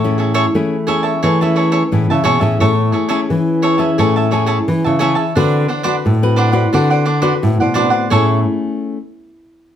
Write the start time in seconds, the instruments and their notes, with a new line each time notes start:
Already playing: nylon-string guitar A2 A3, cavaquinho C#5 E5 A5
0.04 nylon-string guitar C#4 E4 G#4
0.18 cavaquinho G#4 C#5 E5 A5
0.34 cavaquinho G#4 C#5 E5 A5
0.55 nylon-string guitar E3 A3 C#4 E4 G#4
0.87 nylon-string guitar C#4 E4 G#4, cavaquinho G#4 C#5 E5 A5
1.03 cavaquinho C#5 E5 A5
1.23 nylon-string guitar E3 A3, cavaquinho G#4 C#5 E5 A5
1.41 nylon-string guitar C#4 E4 G#4, cavaquinho C#5 E5 A5
1.56 cavaquinho G#4 C#5 E5 A5
1.72 cavaquinho G#4 C#5 E5 A5
1.92 nylon-string guitar A2 E3 C#4 E4 G#4
2.10 nylon-string guitar C#3, cavaquinho C#5 E5 A5
2.24 nylon-string guitar B2, cavaquinho G#4 C#5 E5 A5
2.39 nylon-string guitar A2 C#4 E4 G#4, cavaquinho C#5 E5 A5
2.60 nylon-string guitar A2 A3, cavaquinho C#5 E5 A5
2.92 cavaquinho G#4 C#5 E5 A5
3.09 nylon-string guitar C#4 E4 G#4, cavaquinho G#4 C#5 E5 A5
3.30 nylon-string guitar E3
3.62 cavaquinho G#4 C#5 E5 A5
3.78 nylon-string guitar C#4 E4 G#4, cavaquinho C#5 E5 A5
3.98 nylon-string guitar A2 A3, cavaquinho G#4 C#5 E5 A5
4.16 cavaquinho C#5 E5 A5
4.31 nylon-string guitar C#4 E4 G#4, cavaquinho G#4 C#5 E5 A5
4.46 cavaquinho G#4 C#5 E5 A5
4.68 nylon-string guitar E3
4.84 nylon-string guitar C#3, cavaquinho C#5 E5 A5
4.99 nylon-string guitar C#4 E4 G#4, cavaquinho G#4 C#5 E5 A5
5.15 cavaquinho C#5 E5 A5
5.35 nylon-string guitar D3 C4 F#4 B4, cavaquinho D4 C5 D5 F#5
5.68 cavaquinho D4 C5 D5 F#5
5.83 nylon-string guitar C4 F#4 B4, cavaquinho D4 C5 D5 F#5
6.05 nylon-string guitar A2
6.23 nylon-string guitar C4 F#4 B4
6.36 cavaquinho D4 C5 D5 F#5
6.52 nylon-string guitar C4 F#4 B4, cavaquinho C5 D5 F#5
6.73 nylon-string guitar D3 C4 F#4 B4, cavaquinho D4 C5 D5 F#5
6.90 cavaquinho C5 D5 F#5
7.05 cavaquinho D4 C5 D5 F#5
7.22 nylon-string guitar C4 F#4 B4, cavaquinho D4 C5 D5 F#5
7.42 nylon-string guitar A2
7.60 nylon-string guitar B2, cavaquinho C5 D5 F#5
7.74 nylon-string guitar C4 F#4 B4, cavaquinho D4 C5 D5 F#5
7.90 cavaquinho C5 D5 F#5
8.10 nylon-string guitar A2 A3 C#4 E4 G#4, cavaquinho G#4 C#5 E5 A5